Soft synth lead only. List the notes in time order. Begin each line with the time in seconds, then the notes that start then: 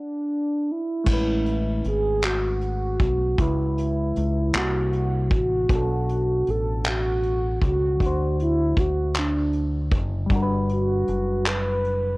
Already playing: D4
0.71 E4
1.88 G#4
2.24 F#4
3.40 E4
4.57 F#4
5.34 F#4
6.50 A4
6.87 F#4
7.66 F#4
8.41 E4
8.79 F#4
9.18 D4
10.71 F#4
11.47 B4